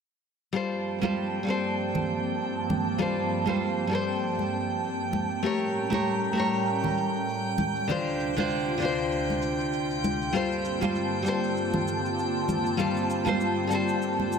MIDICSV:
0, 0, Header, 1, 5, 480
1, 0, Start_track
1, 0, Key_signature, -2, "minor"
1, 0, Tempo, 612245
1, 430, Time_signature, 4, 2, 24, 8
1, 11279, End_track
2, 0, Start_track
2, 0, Title_t, "Synth texture"
2, 0, Program_c, 0, 99
2, 424, Note_on_c, 0, 79, 72
2, 424, Note_on_c, 0, 91, 76
2, 11279, Note_off_c, 0, 79, 0
2, 11279, Note_off_c, 0, 91, 0
2, 11279, End_track
3, 0, Start_track
3, 0, Title_t, "Nylon-string guitar"
3, 0, Program_c, 1, 24
3, 413, Note_on_c, 1, 55, 74
3, 422, Note_on_c, 1, 65, 67
3, 429, Note_on_c, 1, 69, 69
3, 435, Note_on_c, 1, 70, 67
3, 438, Note_off_c, 1, 70, 0
3, 441, Note_on_c, 1, 72, 81
3, 765, Note_off_c, 1, 55, 0
3, 770, Note_off_c, 1, 65, 0
3, 773, Note_off_c, 1, 69, 0
3, 779, Note_off_c, 1, 72, 0
3, 796, Note_on_c, 1, 55, 71
3, 801, Note_on_c, 1, 65, 66
3, 807, Note_on_c, 1, 69, 62
3, 816, Note_on_c, 1, 70, 64
3, 821, Note_off_c, 1, 70, 0
3, 824, Note_on_c, 1, 72, 75
3, 1112, Note_off_c, 1, 55, 0
3, 1119, Note_off_c, 1, 65, 0
3, 1122, Note_on_c, 1, 55, 78
3, 1125, Note_off_c, 1, 69, 0
3, 1134, Note_off_c, 1, 72, 0
3, 1135, Note_on_c, 1, 65, 66
3, 1146, Note_off_c, 1, 65, 0
3, 1150, Note_on_c, 1, 69, 70
3, 1164, Note_on_c, 1, 70, 71
3, 1172, Note_off_c, 1, 70, 0
3, 1175, Note_on_c, 1, 72, 88
3, 2311, Note_off_c, 1, 55, 0
3, 2325, Note_off_c, 1, 69, 0
3, 2338, Note_off_c, 1, 72, 0
3, 2340, Note_on_c, 1, 55, 71
3, 2345, Note_on_c, 1, 65, 66
3, 2351, Note_on_c, 1, 69, 68
3, 2357, Note_on_c, 1, 70, 65
3, 2363, Note_off_c, 1, 70, 0
3, 2366, Note_on_c, 1, 72, 78
3, 2688, Note_off_c, 1, 55, 0
3, 2691, Note_off_c, 1, 65, 0
3, 2694, Note_off_c, 1, 69, 0
3, 2702, Note_off_c, 1, 72, 0
3, 2710, Note_on_c, 1, 55, 69
3, 2718, Note_on_c, 1, 65, 63
3, 2722, Note_on_c, 1, 69, 65
3, 2730, Note_on_c, 1, 70, 63
3, 2735, Note_off_c, 1, 70, 0
3, 2738, Note_on_c, 1, 72, 77
3, 3027, Note_off_c, 1, 55, 0
3, 3034, Note_off_c, 1, 65, 0
3, 3037, Note_on_c, 1, 55, 75
3, 3043, Note_off_c, 1, 69, 0
3, 3051, Note_off_c, 1, 72, 0
3, 3054, Note_on_c, 1, 65, 70
3, 3064, Note_off_c, 1, 65, 0
3, 3068, Note_on_c, 1, 69, 65
3, 3080, Note_on_c, 1, 70, 68
3, 3092, Note_off_c, 1, 70, 0
3, 3095, Note_on_c, 1, 72, 84
3, 4229, Note_off_c, 1, 55, 0
3, 4244, Note_off_c, 1, 69, 0
3, 4254, Note_on_c, 1, 57, 74
3, 4257, Note_off_c, 1, 72, 0
3, 4264, Note_on_c, 1, 67, 70
3, 4273, Note_on_c, 1, 70, 67
3, 4282, Note_on_c, 1, 73, 88
3, 4606, Note_off_c, 1, 57, 0
3, 4610, Note_off_c, 1, 67, 0
3, 4615, Note_off_c, 1, 70, 0
3, 4620, Note_off_c, 1, 73, 0
3, 4627, Note_on_c, 1, 57, 72
3, 4638, Note_on_c, 1, 67, 64
3, 4647, Note_on_c, 1, 70, 66
3, 4657, Note_on_c, 1, 73, 78
3, 4953, Note_off_c, 1, 57, 0
3, 4961, Note_off_c, 1, 67, 0
3, 4962, Note_on_c, 1, 57, 75
3, 4965, Note_off_c, 1, 70, 0
3, 4970, Note_off_c, 1, 73, 0
3, 4979, Note_on_c, 1, 67, 69
3, 4998, Note_on_c, 1, 70, 68
3, 5014, Note_on_c, 1, 73, 87
3, 6151, Note_off_c, 1, 57, 0
3, 6159, Note_off_c, 1, 67, 0
3, 6169, Note_off_c, 1, 70, 0
3, 6175, Note_on_c, 1, 50, 76
3, 6177, Note_off_c, 1, 73, 0
3, 6186, Note_on_c, 1, 62, 69
3, 6196, Note_on_c, 1, 65, 67
3, 6203, Note_on_c, 1, 72, 83
3, 6526, Note_off_c, 1, 50, 0
3, 6532, Note_off_c, 1, 62, 0
3, 6537, Note_off_c, 1, 65, 0
3, 6540, Note_off_c, 1, 72, 0
3, 6558, Note_on_c, 1, 50, 74
3, 6563, Note_on_c, 1, 62, 66
3, 6575, Note_on_c, 1, 65, 62
3, 6585, Note_on_c, 1, 72, 78
3, 6872, Note_off_c, 1, 50, 0
3, 6881, Note_on_c, 1, 50, 77
3, 6883, Note_off_c, 1, 62, 0
3, 6889, Note_off_c, 1, 65, 0
3, 6894, Note_off_c, 1, 72, 0
3, 6899, Note_on_c, 1, 62, 70
3, 6917, Note_on_c, 1, 65, 69
3, 6937, Note_on_c, 1, 72, 82
3, 8071, Note_off_c, 1, 50, 0
3, 8079, Note_off_c, 1, 62, 0
3, 8088, Note_off_c, 1, 65, 0
3, 8096, Note_on_c, 1, 55, 71
3, 8099, Note_off_c, 1, 72, 0
3, 8101, Note_on_c, 1, 65, 68
3, 8112, Note_on_c, 1, 69, 72
3, 8119, Note_on_c, 1, 70, 70
3, 8122, Note_off_c, 1, 70, 0
3, 8125, Note_on_c, 1, 72, 83
3, 8447, Note_off_c, 1, 55, 0
3, 8449, Note_off_c, 1, 65, 0
3, 8455, Note_off_c, 1, 69, 0
3, 8461, Note_off_c, 1, 72, 0
3, 8476, Note_on_c, 1, 55, 70
3, 8480, Note_on_c, 1, 65, 68
3, 8489, Note_on_c, 1, 69, 61
3, 8495, Note_on_c, 1, 70, 66
3, 8499, Note_off_c, 1, 70, 0
3, 8503, Note_on_c, 1, 72, 73
3, 8790, Note_off_c, 1, 55, 0
3, 8796, Note_off_c, 1, 65, 0
3, 8800, Note_on_c, 1, 55, 76
3, 8806, Note_off_c, 1, 69, 0
3, 8813, Note_off_c, 1, 72, 0
3, 8814, Note_on_c, 1, 65, 73
3, 8824, Note_off_c, 1, 65, 0
3, 8827, Note_on_c, 1, 69, 67
3, 8842, Note_on_c, 1, 70, 72
3, 8849, Note_off_c, 1, 70, 0
3, 8852, Note_on_c, 1, 72, 78
3, 9990, Note_off_c, 1, 55, 0
3, 10003, Note_off_c, 1, 69, 0
3, 10013, Note_on_c, 1, 55, 75
3, 10016, Note_off_c, 1, 72, 0
3, 10018, Note_on_c, 1, 65, 69
3, 10024, Note_on_c, 1, 69, 70
3, 10033, Note_on_c, 1, 70, 72
3, 10036, Note_off_c, 1, 70, 0
3, 10038, Note_on_c, 1, 72, 83
3, 10365, Note_off_c, 1, 55, 0
3, 10368, Note_off_c, 1, 65, 0
3, 10371, Note_off_c, 1, 69, 0
3, 10377, Note_off_c, 1, 72, 0
3, 10386, Note_on_c, 1, 55, 72
3, 10393, Note_on_c, 1, 65, 67
3, 10401, Note_on_c, 1, 69, 62
3, 10406, Note_on_c, 1, 70, 70
3, 10411, Note_off_c, 1, 70, 0
3, 10414, Note_on_c, 1, 72, 85
3, 10712, Note_off_c, 1, 55, 0
3, 10718, Note_off_c, 1, 65, 0
3, 10721, Note_on_c, 1, 55, 77
3, 10722, Note_off_c, 1, 69, 0
3, 10729, Note_off_c, 1, 72, 0
3, 10732, Note_on_c, 1, 65, 77
3, 10743, Note_off_c, 1, 65, 0
3, 10746, Note_on_c, 1, 69, 73
3, 10761, Note_on_c, 1, 70, 71
3, 10773, Note_off_c, 1, 70, 0
3, 10776, Note_on_c, 1, 72, 89
3, 11279, Note_off_c, 1, 55, 0
3, 11279, Note_off_c, 1, 69, 0
3, 11279, Note_off_c, 1, 72, 0
3, 11279, End_track
4, 0, Start_track
4, 0, Title_t, "Analog synth pad"
4, 0, Program_c, 2, 89
4, 421, Note_on_c, 2, 58, 69
4, 424, Note_on_c, 2, 43, 71
4, 425, Note_on_c, 2, 60, 69
4, 425, Note_on_c, 2, 81, 82
4, 426, Note_on_c, 2, 53, 67
4, 4234, Note_off_c, 2, 58, 0
4, 4235, Note_off_c, 2, 43, 0
4, 4236, Note_off_c, 2, 53, 0
4, 4236, Note_off_c, 2, 60, 0
4, 4236, Note_off_c, 2, 81, 0
4, 4264, Note_on_c, 2, 61, 69
4, 4268, Note_on_c, 2, 82, 84
4, 4270, Note_on_c, 2, 45, 78
4, 4270, Note_on_c, 2, 55, 68
4, 6168, Note_off_c, 2, 61, 0
4, 6170, Note_off_c, 2, 55, 0
4, 6170, Note_off_c, 2, 82, 0
4, 6171, Note_off_c, 2, 45, 0
4, 6183, Note_on_c, 2, 65, 84
4, 6189, Note_on_c, 2, 38, 79
4, 6189, Note_on_c, 2, 48, 73
4, 8090, Note_off_c, 2, 38, 0
4, 8090, Note_off_c, 2, 48, 0
4, 8106, Note_on_c, 2, 43, 78
4, 8106, Note_on_c, 2, 81, 89
4, 8107, Note_on_c, 2, 58, 72
4, 8110, Note_on_c, 2, 60, 71
4, 8111, Note_on_c, 2, 50, 70
4, 11279, Note_off_c, 2, 43, 0
4, 11279, Note_off_c, 2, 50, 0
4, 11279, Note_off_c, 2, 58, 0
4, 11279, Note_off_c, 2, 60, 0
4, 11279, Note_off_c, 2, 65, 0
4, 11279, Note_off_c, 2, 81, 0
4, 11279, End_track
5, 0, Start_track
5, 0, Title_t, "Drums"
5, 808, Note_on_c, 9, 63, 83
5, 887, Note_off_c, 9, 63, 0
5, 1528, Note_on_c, 9, 64, 82
5, 1533, Note_on_c, 9, 63, 52
5, 1607, Note_off_c, 9, 64, 0
5, 1611, Note_off_c, 9, 63, 0
5, 2110, Note_on_c, 9, 82, 67
5, 2116, Note_on_c, 9, 64, 71
5, 2118, Note_on_c, 9, 63, 74
5, 2188, Note_off_c, 9, 82, 0
5, 2194, Note_off_c, 9, 64, 0
5, 2196, Note_off_c, 9, 63, 0
5, 2347, Note_on_c, 9, 64, 71
5, 2426, Note_off_c, 9, 64, 0
5, 2582, Note_on_c, 9, 82, 70
5, 2660, Note_off_c, 9, 82, 0
5, 2723, Note_on_c, 9, 63, 86
5, 2801, Note_off_c, 9, 63, 0
5, 3305, Note_on_c, 9, 82, 39
5, 3383, Note_off_c, 9, 82, 0
5, 3443, Note_on_c, 9, 63, 59
5, 3521, Note_off_c, 9, 63, 0
5, 3548, Note_on_c, 9, 82, 64
5, 3626, Note_off_c, 9, 82, 0
5, 3685, Note_on_c, 9, 82, 29
5, 3764, Note_off_c, 9, 82, 0
5, 3788, Note_on_c, 9, 82, 40
5, 3866, Note_off_c, 9, 82, 0
5, 3924, Note_on_c, 9, 82, 28
5, 4002, Note_off_c, 9, 82, 0
5, 4022, Note_on_c, 9, 63, 78
5, 4027, Note_on_c, 9, 82, 65
5, 4101, Note_off_c, 9, 63, 0
5, 4106, Note_off_c, 9, 82, 0
5, 4163, Note_on_c, 9, 82, 28
5, 4242, Note_off_c, 9, 82, 0
5, 4404, Note_on_c, 9, 82, 27
5, 4483, Note_off_c, 9, 82, 0
5, 4503, Note_on_c, 9, 82, 68
5, 4581, Note_off_c, 9, 82, 0
5, 4646, Note_on_c, 9, 63, 85
5, 4725, Note_off_c, 9, 63, 0
5, 4745, Note_on_c, 9, 82, 39
5, 4824, Note_off_c, 9, 82, 0
5, 4982, Note_on_c, 9, 82, 72
5, 5060, Note_off_c, 9, 82, 0
5, 5124, Note_on_c, 9, 82, 30
5, 5203, Note_off_c, 9, 82, 0
5, 5229, Note_on_c, 9, 82, 42
5, 5308, Note_off_c, 9, 82, 0
5, 5361, Note_on_c, 9, 63, 52
5, 5365, Note_on_c, 9, 64, 78
5, 5439, Note_off_c, 9, 63, 0
5, 5444, Note_off_c, 9, 64, 0
5, 5469, Note_on_c, 9, 82, 65
5, 5548, Note_off_c, 9, 82, 0
5, 5609, Note_on_c, 9, 82, 30
5, 5687, Note_off_c, 9, 82, 0
5, 5714, Note_on_c, 9, 82, 41
5, 5792, Note_off_c, 9, 82, 0
5, 5942, Note_on_c, 9, 64, 67
5, 5944, Note_on_c, 9, 63, 85
5, 5950, Note_on_c, 9, 82, 69
5, 6020, Note_off_c, 9, 64, 0
5, 6022, Note_off_c, 9, 63, 0
5, 6029, Note_off_c, 9, 82, 0
5, 6088, Note_on_c, 9, 82, 29
5, 6166, Note_off_c, 9, 82, 0
5, 6189, Note_on_c, 9, 82, 41
5, 6193, Note_on_c, 9, 64, 68
5, 6267, Note_off_c, 9, 82, 0
5, 6271, Note_off_c, 9, 64, 0
5, 6325, Note_on_c, 9, 82, 27
5, 6404, Note_off_c, 9, 82, 0
5, 6430, Note_on_c, 9, 82, 68
5, 6508, Note_off_c, 9, 82, 0
5, 6563, Note_on_c, 9, 82, 31
5, 6570, Note_on_c, 9, 63, 83
5, 6641, Note_off_c, 9, 82, 0
5, 6648, Note_off_c, 9, 63, 0
5, 6666, Note_on_c, 9, 82, 41
5, 6745, Note_off_c, 9, 82, 0
5, 6907, Note_on_c, 9, 82, 70
5, 6986, Note_off_c, 9, 82, 0
5, 7045, Note_on_c, 9, 82, 28
5, 7123, Note_off_c, 9, 82, 0
5, 7150, Note_on_c, 9, 82, 40
5, 7229, Note_off_c, 9, 82, 0
5, 7291, Note_on_c, 9, 63, 60
5, 7370, Note_off_c, 9, 63, 0
5, 7389, Note_on_c, 9, 82, 69
5, 7467, Note_off_c, 9, 82, 0
5, 7527, Note_on_c, 9, 82, 31
5, 7605, Note_off_c, 9, 82, 0
5, 7631, Note_on_c, 9, 82, 41
5, 7709, Note_off_c, 9, 82, 0
5, 7767, Note_on_c, 9, 82, 27
5, 7846, Note_off_c, 9, 82, 0
5, 7873, Note_on_c, 9, 82, 72
5, 7875, Note_on_c, 9, 63, 88
5, 7951, Note_off_c, 9, 82, 0
5, 7953, Note_off_c, 9, 63, 0
5, 8011, Note_on_c, 9, 82, 31
5, 8089, Note_off_c, 9, 82, 0
5, 8113, Note_on_c, 9, 82, 40
5, 8191, Note_off_c, 9, 82, 0
5, 8249, Note_on_c, 9, 82, 27
5, 8327, Note_off_c, 9, 82, 0
5, 8351, Note_on_c, 9, 82, 64
5, 8429, Note_off_c, 9, 82, 0
5, 8487, Note_on_c, 9, 63, 92
5, 8488, Note_on_c, 9, 82, 31
5, 8566, Note_off_c, 9, 63, 0
5, 8567, Note_off_c, 9, 82, 0
5, 8589, Note_on_c, 9, 82, 35
5, 8667, Note_off_c, 9, 82, 0
5, 8829, Note_on_c, 9, 82, 68
5, 8907, Note_off_c, 9, 82, 0
5, 8967, Note_on_c, 9, 82, 30
5, 9046, Note_off_c, 9, 82, 0
5, 9072, Note_on_c, 9, 82, 42
5, 9151, Note_off_c, 9, 82, 0
5, 9200, Note_on_c, 9, 63, 56
5, 9202, Note_on_c, 9, 64, 83
5, 9278, Note_off_c, 9, 63, 0
5, 9280, Note_off_c, 9, 64, 0
5, 9312, Note_on_c, 9, 82, 68
5, 9390, Note_off_c, 9, 82, 0
5, 9453, Note_on_c, 9, 82, 30
5, 9531, Note_off_c, 9, 82, 0
5, 9556, Note_on_c, 9, 82, 41
5, 9635, Note_off_c, 9, 82, 0
5, 9790, Note_on_c, 9, 63, 81
5, 9791, Note_on_c, 9, 82, 68
5, 9793, Note_on_c, 9, 64, 63
5, 9868, Note_off_c, 9, 63, 0
5, 9869, Note_off_c, 9, 82, 0
5, 9871, Note_off_c, 9, 64, 0
5, 9928, Note_on_c, 9, 82, 30
5, 10006, Note_off_c, 9, 82, 0
5, 10030, Note_on_c, 9, 82, 39
5, 10032, Note_on_c, 9, 64, 66
5, 10109, Note_off_c, 9, 82, 0
5, 10111, Note_off_c, 9, 64, 0
5, 10167, Note_on_c, 9, 82, 27
5, 10245, Note_off_c, 9, 82, 0
5, 10271, Note_on_c, 9, 82, 64
5, 10350, Note_off_c, 9, 82, 0
5, 10402, Note_on_c, 9, 63, 80
5, 10409, Note_on_c, 9, 82, 29
5, 10480, Note_off_c, 9, 63, 0
5, 10487, Note_off_c, 9, 82, 0
5, 10510, Note_on_c, 9, 82, 36
5, 10589, Note_off_c, 9, 82, 0
5, 10748, Note_on_c, 9, 82, 68
5, 10826, Note_off_c, 9, 82, 0
5, 10887, Note_on_c, 9, 82, 29
5, 10966, Note_off_c, 9, 82, 0
5, 10993, Note_on_c, 9, 82, 39
5, 11072, Note_off_c, 9, 82, 0
5, 11130, Note_on_c, 9, 63, 55
5, 11208, Note_off_c, 9, 63, 0
5, 11232, Note_on_c, 9, 82, 65
5, 11279, Note_off_c, 9, 82, 0
5, 11279, End_track
0, 0, End_of_file